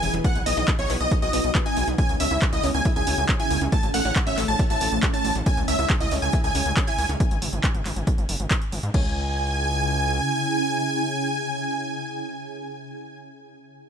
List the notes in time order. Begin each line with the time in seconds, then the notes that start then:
Already playing: E3 E4 G#4 B4 G#5
0.03 E1, open hi-hat
0.14 E1 E3, closed hi-hat
0.24 B3 D#4 F#4 F#5, kick, closed hi-hat
0.35 B1, closed hi-hat
0.46 B1 B3 D#5, open hi-hat
0.57 B1 D#4, closed hi-hat
0.68 kick, clap, closed hi-hat
0.79 B1 D#4 C#5, closed hi-hat
0.90 B1 B3, clap, open hi-hat
1.00 B1 D#5
1.11 D#4, kick, closed hi-hat
1.22 B1 F#4 D#5, closed hi-hat
1.33 B1 B3, open hi-hat
1.44 B1, closed hi-hat
1.55 B3, kick, clap, closed hi-hat
1.66 D#4 G#5, closed hi-hat
1.77 B1, open hi-hat
1.88 B1 B2, closed hi-hat
1.98 C#3 C#4 E4 G#4 G#5, kick, closed hi-hat
2.09 C#2, closed hi-hat
2.20 C#2 C#4 E5, open hi-hat
2.31 C#2 E4
2.42 kick, clap, closed hi-hat
2.53 C#2 E4 D#5, closed hi-hat
2.63 C#2 C#4, open hi-hat
2.74 C#2 G#5, closed hi-hat
2.85 E4, kick, closed hi-hat
2.96 C#2 G#4 G#5, closed hi-hat
3.07 C#2 C#4, open hi-hat
3.18 C#2, closed hi-hat
3.29 C#4, kick, clap, closed hi-hat
3.40 E4 G#5, closed hi-hat
3.50 C#2, open hi-hat
3.61 C#2 C#3, closed hi-hat
3.72 A3 A5, kick, closed hi-hat
3.83 A1, closed hi-hat
3.94 A1 A3 F#5, open hi-hat
4.05 A1 C#4, closed hi-hat
4.16 kick, clap, closed hi-hat
4.27 A1 C#4 E5, closed hi-hat
4.38 A1 A3, clap, open hi-hat
4.48 A1 A5, closed hi-hat
4.59 C#4, kick, closed hi-hat
4.70 A1 E4 A5, closed hi-hat
4.81 A1 A3, open hi-hat
4.92 A1, closed hi-hat
5.03 A3, kick, clap, closed hi-hat
5.13 C#4 A5, closed hi-hat
5.25 A1, open hi-hat
5.35 A1 A2, closed hi-hat
5.46 C#3 C#4 G#4 G#5, kick, closed hi-hat
5.57 C#2, closed hi-hat
5.68 C#2 C#4 E5, open hi-hat
5.79 C#2 E4, closed hi-hat
5.90 kick, clap, closed hi-hat
6.00 C#2 E4 D#5, closed hi-hat
6.11 C#2 C#4, open hi-hat
6.22 C#2 G#5, closed hi-hat
6.33 E4, kick, closed hi-hat
6.44 C#2 G#4 G#5, closed hi-hat
6.55 C#2 C#4, open hi-hat
6.66 C#2, closed hi-hat
6.77 C#4, kick, clap, closed hi-hat
6.87 E4 G#5, closed hi-hat
6.98 C#2, open hi-hat
7.09 C#2 C#3, closed hi-hat
7.20 kick, closed hi-hat
7.31 G#1, closed hi-hat
7.42 G#1, open hi-hat
7.53 G#1, closed hi-hat
7.64 kick, clap, closed hi-hat
7.74 G#1, closed hi-hat
7.85 G#1, clap, open hi-hat
7.96 G#1, closed hi-hat
8.07 kick, closed hi-hat
8.18 G#1, closed hi-hat
8.29 F#1, open hi-hat
8.40 G#1, closed hi-hat
8.51 kick, clap, closed hi-hat
8.62 closed hi-hat
8.72 G#1, open hi-hat
8.83 G#2, closed hi-hat
8.94 C#2 C#3 C#4 E4 G#4 G#5, kick, crash